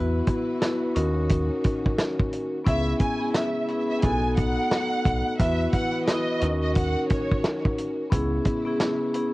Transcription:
Already playing: picked electric bass E2, string section E3 E4 F#4 B4, vibraphone B3 E4 F#4 B4
0.27 kick, closed hi-hat
0.60 vibraphone B3 E4 F#4 B4, cross-stick, snare, closed hi-hat
0.95 picked electric bass D#2, string section D#3 A#3 C#4, vibraphone C#4 D#4 F#4 A#4, closed hi-hat
1.30 kick, closed hi-hat
1.64 kick, closed hi-hat
1.86 kick
1.98 cross-stick, snare, closed hi-hat
2.20 kick
2.33 closed hi-hat
2.65 picked electric bass C#2, string section C#3 G#3 B3 E4, vibraphone B3 C#4 E4 G#4, violin section E5, kick, closed hi-hat
3.00 violin section G#5, kick, closed hi-hat
3.20 vibraphone B3 C#4 E4 G#4
3.34 violin section E5, cross-stick, snare, closed hi-hat
3.68 vibraphone B3 C#4 E4 G#4, closed hi-hat
3.90 violin section E5
4.02 picked electric bass B1, string section A3 D#4, vibraphone B3 D#4 F#4 A4, violin section G#5, kick, closed hi-hat
4.37 violin section F#5, kick, closed hi-hat
4.71 cross-stick, snare, closed hi-hat
5.05 picked electric bass B1, kick, closed hi-hat
5.39 picked electric bass E2, string section E3 E4 F#4 B4, vibraphone B3 E4 F#4 B4, violin section E5, kick, closed hi-hat
5.72 violin section F#5, kick, closed hi-hat
6.06 vibraphone B3 E4 F#4 B4, violin section D#5, cross-stick, snare, closed hi-hat
6.40 picked electric bass D#2, string section D#3 A#3 C#4, vibraphone C#4 D#4 F#4 A#4, closed hi-hat
6.62 violin section D#5
6.75 violin section F#5, kick, closed hi-hat
7.09 violin section C#5, kick, closed hi-hat
7.31 kick
7.44 cross-stick, snare, closed hi-hat
7.65 kick
7.78 closed hi-hat
8.10 picked electric bass C#2, string section C#3 G#3 B3 E4, vibraphone B3 C#4 E4 G#4, kick, closed hi-hat
8.45 kick, closed hi-hat
8.65 vibraphone B3 C#4 E4 G#4
8.80 cross-stick, snare, closed hi-hat
9.14 vibraphone B3 C#4 E4 G#4, closed hi-hat

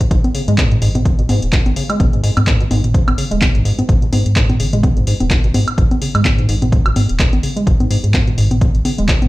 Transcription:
0.01 acid bass G#2, kick, closed hi-hat
0.11 analog synth bass G#1, acid bass G#2, kick, closed hi-hat
0.24 closed hi-hat, high conga
0.35 acid bass C#3, open hi-hat
0.48 analog synth bass G#2, acid bass G#3, closed hi-hat
0.58 acid bass A#2, kick, clap, closed hi-hat, high conga
0.72 acid bass G#2, closed hi-hat, mid tom
0.82 analog synth bass G#1, acid bass G#2, open hi-hat
0.95 acid bass G#2, closed hi-hat, mid tom, high conga
1.05 acid bass G#2, kick, closed hi-hat
1.19 analog synth bass G#1, acid bass B2, closed hi-hat
1.29 acid bass G#2, open hi-hat, high conga
1.42 analog synth bass D#1, closed hi-hat
1.52 acid bass G#2, kick, clap, closed hi-hat
1.66 analog synth bass G#1, closed hi-hat, high conga
1.76 acid bass C#3, open hi-hat
1.90 acid bass G#3, closed hi-hat, high woodblock
2.00 analog synth bass G#1, acid bass A#2, kick, closed hi-hat, high conga
2.13 acid bass G#2, closed hi-hat
2.23 acid bass G#2, open hi-hat
2.37 acid bass G#2, analog synth bass G#2, closed hi-hat, high conga, high woodblock
2.47 acid bass G#2, kick, clap, closed hi-hat
2.60 acid bass B2, closed hi-hat
2.71 analog synth bass G#1, acid bass G#2, open hi-hat, high conga
2.84 closed hi-hat, mid tom
2.94 acid bass G#2, kick, closed hi-hat
3.08 analog synth bass G#1, closed hi-hat, high conga, high woodblock
3.18 acid bass C#3, open hi-hat
3.31 analog synth bass D#1, acid bass G#3, closed hi-hat
3.41 acid bass A#2, kick, clap, closed hi-hat, high conga
3.55 analog synth bass G#1, acid bass G#2, closed hi-hat
3.65 acid bass G#2, open hi-hat
3.78 acid bass G#2, closed hi-hat, high conga
3.89 analog synth bass G#1, acid bass G#2, kick, closed hi-hat
4.02 acid bass B2, closed hi-hat
4.12 acid bass G#2, open hi-hat, high conga
4.26 analog synth bass G#2, closed hi-hat
4.36 acid bass G#2, kick, clap, closed hi-hat
4.50 closed hi-hat, mid tom, high conga
4.60 analog synth bass G#1, acid bass C#3, open hi-hat
4.73 acid bass G#3, closed hi-hat, mid tom
4.83 acid bass A#2, kick, closed hi-hat, high conga
4.97 analog synth bass G#1, acid bass G#2, closed hi-hat
5.07 acid bass G#2, open hi-hat
5.20 analog synth bass D#1, acid bass G#2, closed hi-hat, high conga
5.30 acid bass G#2, kick, clap, closed hi-hat
5.44 analog synth bass G#1, acid bass B2, closed hi-hat
5.54 acid bass G#2, open hi-hat, high conga
5.68 closed hi-hat, high woodblock
5.78 analog synth bass G#1, acid bass G#2, kick, closed hi-hat
5.91 closed hi-hat, high conga
6.02 acid bass C#3, open hi-hat
6.15 analog synth bass G#2, acid bass G#3, closed hi-hat, high woodblock
6.25 acid bass A#2, kick, clap, closed hi-hat, high conga
6.38 acid bass G#2, closed hi-hat, mid tom
6.49 analog synth bass G#1, acid bass G#2, open hi-hat
6.62 acid bass G#2, closed hi-hat, mid tom, high conga
6.72 acid bass G#2, kick, closed hi-hat
6.86 analog synth bass G#1, acid bass B2, closed hi-hat, high woodblock
6.96 acid bass G#2, open hi-hat, high conga
7.09 analog synth bass D#1, closed hi-hat
7.19 acid bass G#2, kick, clap, closed hi-hat
7.33 analog synth bass G#1, closed hi-hat, high conga
7.43 acid bass C#3, open hi-hat
7.56 acid bass G#3, closed hi-hat
7.67 analog synth bass G#1, acid bass A#2, kick, closed hi-hat
7.80 acid bass G#2, closed hi-hat, high conga
7.90 acid bass G#2, open hi-hat
8.04 acid bass G#2, analog synth bass G#2, closed hi-hat
8.14 acid bass G#2, kick, clap, closed hi-hat, high conga
8.27 acid bass B2, closed hi-hat, mid tom
8.38 analog synth bass G#1, acid bass G#2, open hi-hat
8.51 closed hi-hat, mid tom, high conga
8.61 acid bass G#2, kick, closed hi-hat
8.75 analog synth bass G#1, closed hi-hat
8.85 acid bass C#3, open hi-hat, high conga
8.98 analog synth bass D#1, acid bass G#3, closed hi-hat
9.08 acid bass A#2, kick, clap, closed hi-hat
9.22 analog synth bass G#1, acid bass G#2, closed hi-hat, high conga

